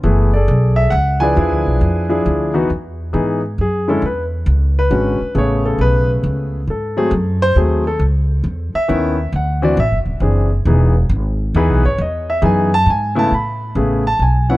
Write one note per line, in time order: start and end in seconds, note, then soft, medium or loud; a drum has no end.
0.03 0.46 F#1 medium
0.03 0.30 E3 medium
0.03 0.30 A3 medium
0.03 0.30 B3 medium
0.03 0.30 G#4 medium
0.34 0.89 G#4 medium
0.34 0.89 A4 medium
0.34 0.79 D5 medium
0.48 0.91 B1 medium
0.76 0.92 E5 medium
0.90 1.35 C#2 medium
0.90 1.22 F#5 loud
1.20 1.35 F3 medium
1.20 1.35 D4 medium
1.20 1.35 E4 medium
1.20 1.36 G#4 medium
1.20 2.22 B4 medium
1.20 2.22 D5 medium
1.20 2.20 G#5 medium
1.36 1.51 E2 medium
1.36 2.04 F3 medium
1.36 2.04 D4 medium
1.36 2.04 E4 medium
1.36 2.05 G#4 medium
1.51 1.66 D2 medium
1.66 1.80 B1 medium
1.81 2.24 F2 medium
2.09 2.51 F3 medium
2.09 2.51 D4 medium
2.09 2.51 E4 medium
2.09 2.51 G#4 medium
2.26 2.68 D2 medium
2.54 2.68 E3 medium
2.54 2.67 B3 medium
2.54 2.68 D#4 medium
2.54 2.68 F#4 medium
2.70 3.13 E2 medium
3.13 3.57 G#2 medium
3.13 3.40 E3 medium
3.13 3.40 B3 medium
3.13 3.40 D#4 medium
3.13 3.40 G#4 medium
3.58 4.01 F#2 medium
3.58 3.88 G#4 medium
3.88 4.01 D3 medium
3.88 4.01 G#3 medium
3.88 4.01 C#4 medium
3.88 4.02 E4 medium
3.88 4.03 A4 medium
4.02 4.45 E2 medium
4.02 4.22 B4 medium
4.46 4.89 C#2 medium
4.79 5.32 B4 medium
4.90 5.18 G#1 medium
4.90 5.17 D3 medium
4.90 5.17 G#3 soft
4.90 5.17 C#4 medium
4.90 5.17 F#4 medium
5.21 muted upright bass stroke soft
5.35 5.78 A1 medium
5.35 6.59 C#3 medium
5.35 6.59 A3 medium
5.35 6.59 B3 medium
5.35 6.59 G#4 medium
5.35 5.65 C#5 medium
5.66 5.79 A4 medium
5.79 6.22 B1 medium
5.79 6.09 B4 medium
6.24 6.66 C#2 medium
6.67 7.10 G#2 medium
6.67 7.39 A4 medium
6.97 7.10 F#3 medium
6.97 7.11 A3 medium
6.97 7.11 C4 medium
6.97 7.11 G#4 medium
7.11 7.54 F#2 medium
7.42 7.56 C5 loud
7.56 7.99 D#2 medium
7.56 7.83 F#3 medium
7.56 7.83 A3 medium
7.56 7.83 C4 medium
7.56 7.83 G#4 medium
7.87 8.01 A4 medium
7.99 8.43 C#2 medium
8.44 8.72 E2 medium
8.74 9.30 E5 loud
8.74 muted upright bass stroke soft
8.88 9.32 D#2 medium
8.88 9.15 D#3 medium
8.88 9.15 B3 medium
8.88 9.15 C#4 medium
8.88 9.16 E4 medium
9.32 9.76 D2 medium
9.32 9.63 F#5 medium
9.62 9.76 E3 medium
9.62 9.76 C4 medium
9.62 9.76 D4 medium
9.62 9.76 F#4 medium
9.62 9.78 D5 medium
9.77 9.93 A1 medium
9.77 9.97 E5 medium
9.91 10.05 F#1 medium
10.06 10.20 D1 medium
10.20 10.64 F#1 medium
10.20 10.48 E3 medium
10.20 10.48 C4 medium
10.20 10.48 D4 medium
10.20 10.49 G#4 medium
10.65 11.09 E1 medium
10.65 10.93 E3 medium
10.65 10.93 B3 medium
10.65 10.93 D#4 medium
10.65 10.93 G#4 medium
11.09 11.53 G#1 loud
11.55 11.69 D#2 medium
11.55 11.81 E3 medium
11.55 11.82 B3 medium
11.55 11.82 D#4 medium
11.55 11.82 G#4 medium
11.55 11.84 B4 medium
11.69 11.83 B1 medium
11.84 11.98 G#1 medium
11.84 11.99 C#5 medium
11.98 12.41 E2 medium
11.98 12.28 D#5 medium
12.30 12.43 E5 medium
12.42 12.85 F#2 medium
12.42 12.69 E3 medium
12.42 12.69 B3 medium
12.42 12.69 D#4 medium
12.42 12.69 G#4 medium
12.42 12.73 G#5 medium
12.74 12.87 A5 loud
12.86 13.29 G#2 medium
12.90 13.17 G#5 medium
13.15 13.29 C#3 medium
13.15 13.29 A3 medium
13.15 13.29 B3 medium
13.15 13.30 E4 medium
13.15 13.32 A5 medium
13.31 13.74 A2 medium
13.31 14.02 B5 medium
13.75 14.18 A1 medium
13.75 14.02 C#3 medium
13.75 14.02 A3 medium
13.75 14.02 B3 medium
13.75 14.02 G#4 medium
14.07 14.20 A5 loud
14.19 14.57 B1 medium
14.19 14.49 G#5 medium
14.49 14.57 F3 medium
14.49 14.57 B3 medium
14.49 14.57 C#4 medium
14.49 14.57 E4 medium
14.49 14.57 F#5 medium